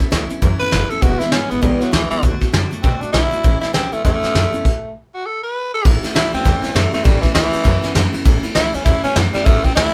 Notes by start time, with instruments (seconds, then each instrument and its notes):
0.00 steel-string acoustic guitar A3 C#4 E4, muted upright bass stroke, kick
0.11 upright bass D2, steel-string acoustic guitar E3 A3 C#4 E4, snare, closed hi-hat
0.29 steel-string acoustic guitar A3 C#4 E4, muted upright bass stroke, closed hi-hat
0.42 upright bass F#2, steel-string acoustic guitar A2 E3 A3 C#4 E4, kick, closed hi-hat
0.60 steel-string acoustic guitar A3 C#4 E4, tenor saxophone B4, muted upright bass stroke, closed hi-hat
0.72 upright bass F#1, steel-string acoustic guitar E3 A3 C#4 E4, snare, closed hi-hat
0.90 steel-string acoustic guitar A3 C#4 E4, tenor saxophone A4, muted upright bass stroke, closed hi-hat
1.02 upright bass E1, steel-string acoustic guitar E2 B2 E3 G#3 B3 E4, tenor saxophone F#4, kick, closed hi-hat
1.20 steel-string acoustic guitar E3 G#3 B3 E4, tenor saxophone E4, muted upright bass stroke, snare, closed hi-hat
1.32 upright bass G#1, steel-string acoustic guitar E3 G#3 B3 E4, tenor saxophone C#4, snare, closed hi-hat
1.50 upright bass A1, steel-string acoustic guitar E3 G#3 B3 E4, tenor saxophone B3, closed hi-hat
1.61 upright bass B1, steel-string acoustic guitar E2 B2 E3 G#3 B3 E4, tenor saxophone G3, kick, closed hi-hat
1.80 steel-string acoustic guitar E3 G#3 B3 E4, tenor saxophone F#3, muted upright bass stroke, snare, closed hi-hat
1.91 upright bass D2, steel-string acoustic guitar E3 G#3 B3 E4, tenor saxophone E3, snare, closed hi-hat
2.11 tenor saxophone E3, steel-string acoustic guitar E3 G#3 B3 E4, muted upright bass stroke, closed hi-hat
2.23 upright bass D2, steel-string acoustic guitar D3 A3 D4 F#4, kick, closed hi-hat
2.41 steel-string acoustic guitar A3 D4 F#4, muted upright bass stroke, kick, snare, closed hi-hat
2.53 upright bass F#2, steel-string acoustic guitar D3 A3 D4 F#4, snare, closed hi-hat
2.71 steel-string acoustic guitar A3 D4 F#4, muted upright bass stroke, closed hi-hat
2.82 upright bass B2, steel-string acoustic guitar D3 A3 D4 F#4, tenor saxophone C4, kick, closed hi-hat
3.01 steel-string acoustic guitar A3 D4 F#4, tenor saxophone D4, muted upright bass stroke, closed hi-hat
3.12 upright bass B1, steel-string acoustic guitar D3 A3 D4 F#4, tenor saxophone E4, snare, closed hi-hat
3.31 steel-string acoustic guitar A3 D4 F#4, muted upright bass stroke, closed hi-hat
3.44 upright bass A1, steel-string acoustic guitar A2 E3 A3 C#4 E4, kick, closed hi-hat
3.61 steel-string acoustic guitar A3 C#4 E4, tenor saxophone E4, muted upright bass stroke, snare, closed hi-hat
3.73 upright bass C#2, steel-string acoustic guitar E3 A3 C#4 E4, tenor saxophone C4, snare, closed hi-hat
3.92 upright bass D2, tenor saxophone A3, steel-string acoustic guitar A3 C#4 E4, closed hi-hat
4.04 upright bass E2, steel-string acoustic guitar A2 E3 A3 C#4 E4, tenor saxophone A3, kick, snare, closed hi-hat
4.22 steel-string acoustic guitar A3 C#4 E4, muted upright bass stroke, snare, closed hi-hat
4.35 upright bass F#2, steel-string acoustic guitar E3 C#4 E4, snare, closed hi-hat
4.53 steel-string acoustic guitar A3 C#4 E4, muted upright bass stroke, closed hi-hat
4.65 kick, crash
5.14 tenor saxophone F#4
5.26 tenor saxophone A4
5.43 tenor saxophone B4
5.74 tenor saxophone A4
5.85 upright bass A1, steel-string acoustic guitar A2 E3 A3 C#4 E4, kick, crash
6.03 steel-string acoustic guitar A3 C#4 E4, muted upright bass stroke, snare, ride
6.14 upright bass C#2, steel-string acoustic guitar E3 A3 C#4 E4, tenor saxophone E4, snare, ride
6.33 upright bass D2, steel-string acoustic guitar A3 C#4 E4, tenor saxophone C4, ride
6.45 upright bass E2, steel-string acoustic guitar A2 E3 A3 C#4 E4, kick, snare, ride
6.62 steel-string acoustic guitar A3 C#4 E4, muted upright bass stroke, snare, ride
6.75 upright bass F#2, steel-string acoustic guitar E3 A3 C#4 E4, tenor saxophone A3, snare, ride
6.92 tenor saxophone A3, steel-string acoustic guitar A3 C#4 E4, muted upright bass stroke, snare, ride
7.04 upright bass A1, steel-string acoustic guitar A2 E3 A3 C#4 E4, tenor saxophone G3, kick, ride
7.22 tenor saxophone E3, steel-string acoustic guitar A3 C#4 E4, muted upright bass stroke, kick, snare, ride
7.34 upright bass D2, tenor saxophone E3, steel-string acoustic guitar E3 A3 C#4 E4, snare, ride
7.53 steel-string acoustic guitar A3 C#4 E4, muted upright bass stroke, ride
7.64 upright bass F#2, steel-string acoustic guitar A2 E3 A3 C#4 E4, kick, snare, ride
7.82 steel-string acoustic guitar A3 C#4 E4, muted upright bass stroke, snare, ride
7.95 upright bass F#2, steel-string acoustic guitar E3 A3 C#4 E4, snare, ride
8.13 steel-string acoustic guitar A3 C#4 E4, muted upright bass stroke, ride
8.25 upright bass A1, steel-string acoustic guitar A2 E3 A3 C#4 E4, kick, ride
8.43 steel-string acoustic guitar A3 C#4 E4, muted upright bass stroke, ride
8.55 upright bass C#2, steel-string acoustic guitar E3 A3 C#4 E4, tenor saxophone E4, snare, ride
8.73 upright bass D2, steel-string acoustic guitar A3 C#4 E4, tenor saxophone C#4, ride
8.85 upright bass E2, steel-string acoustic guitar A2 E3 A3 C#4 E4, tenor saxophone E4, kick, snare, ride
9.04 steel-string acoustic guitar A3 C#4 E4, tenor saxophone C#4, muted upright bass stroke, ride
9.16 upright bass F#2, steel-string acoustic guitar E3 A3 C#4 E4, snare, ride
9.34 tenor saxophone G3, steel-string acoustic guitar A3 C#4 E4, muted upright bass stroke, snare, ride
9.45 upright bass A1, steel-string acoustic guitar A2 E3 A3 C#4 E4, tenor saxophone A3, kick, ride
9.63 steel-string acoustic guitar A3 C#4 E4, tenor saxophone C4, muted upright bass stroke, kick, ride
9.75 upright bass D2, steel-string acoustic guitar E3 A3 C#4 E4, tenor saxophone E4, snare, ride